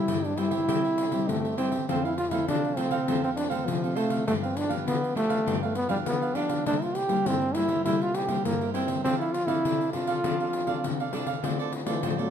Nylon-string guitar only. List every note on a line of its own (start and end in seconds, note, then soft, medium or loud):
0.00 0.33 G3 medium
0.00 0.33 C4 medium
0.00 0.33 E4 medium
0.08 0.65 G2 medium
0.37 0.63 G3 medium
0.37 0.64 C4 medium
0.37 0.64 E4 medium
0.68 1.25 C3 medium
0.68 1.08 G3 medium
0.68 1.08 C4 medium
0.68 1.09 E4 medium
1.11 1.53 G3 medium
1.11 1.53 C4 medium
1.11 1.53 E4 medium
1.28 1.85 G2 medium
1.57 1.76 G3 medium
1.57 1.76 C4 medium
1.57 1.76 E4 medium
1.88 2.45 F2 medium
1.88 2.16 F3 medium
1.88 2.17 A3 soft
1.88 2.17 C4 medium
2.31 2.72 F3 medium
2.31 2.72 A3 medium
2.31 2.73 C4 medium
2.48 3.05 C3 medium
2.77 2.95 F3 medium
2.77 2.95 A3 medium
2.77 2.95 C4 medium
3.08 3.65 F2 medium
3.08 3.48 F3 medium
3.08 3.48 A3 medium
3.08 3.48 C4 medium
3.51 3.77 F3 medium
3.51 3.77 A3 medium
3.51 3.77 C4 medium
3.67 4.24 C3 medium
3.83 4.23 F3 medium
3.83 4.23 A3 medium
3.83 4.23 C4 medium
4.27 4.84 G2 medium
4.27 4.67 F3 medium
4.27 4.68 B3 medium
4.27 4.68 D4 medium
4.69 5.11 F3 medium
4.69 5.11 B3 medium
4.69 5.11 D4 medium
4.87 5.44 D3 medium
5.16 5.41 F3 medium
5.16 5.41 B3 medium
5.16 5.42 D4 medium
5.46 6.03 G2 medium
5.46 5.75 F3 medium
5.46 5.75 B3 medium
5.46 5.75 D4 medium
5.89 6.30 F3 medium
5.89 6.31 B3 medium
5.89 6.31 D4 medium
6.06 6.63 D3 medium
6.35 6.61 F3 medium
6.35 6.61 B3 medium
6.35 6.61 D4 medium
6.66 7.23 C3 medium
6.66 6.94 G3 medium
6.66 6.94 A#3 medium
6.66 6.95 E4 medium
7.09 7.50 G3 medium
7.09 7.50 A#3 medium
7.09 7.50 E4 medium
7.26 7.83 G2 medium
7.55 7.73 G3 medium
7.55 7.73 A#3 medium
7.55 7.74 E4 medium
7.86 8.43 C3 medium
7.86 8.26 G3 medium
7.86 8.26 A#3 medium
7.86 8.26 E4 medium
8.28 8.69 G3 medium
8.28 8.69 A#3 medium
8.28 8.70 E4 medium
8.45 9.02 G2 medium
8.74 9.00 G3 medium
8.74 9.00 A#3 medium
8.74 9.00 E4 medium
9.05 9.62 F3 medium
9.05 9.33 C4 medium
9.05 9.33 D4 medium
9.05 9.33 A4 medium
9.47 9.88 C4 medium
9.47 9.89 D4 medium
9.47 9.89 A4 medium
9.64 10.21 C3 medium
9.93 10.19 C4 medium
9.93 10.19 D4 medium
9.93 10.19 A4 medium
10.24 10.81 F3 medium
10.24 10.65 C4 medium
10.24 10.65 D4 medium
10.24 10.65 A4 medium
10.67 11.08 C4 medium
10.67 11.08 D4 medium
10.67 11.08 A4 medium
10.84 11.41 C3 medium
11.12 11.31 C4 medium
11.12 11.31 D4 medium
11.12 11.31 A4 medium
11.43 12.00 D3 medium
11.43 11.83 A3 medium
11.43 11.84 C4 medium
11.43 11.84 F4 medium
11.86 12.12 A3 medium
11.86 12.12 C4 medium
11.86 12.13 F4 medium
12.03 12.30 A2 medium
12.19 12.30 A3 medium
12.19 12.30 C4 medium
12.19 12.30 F4 medium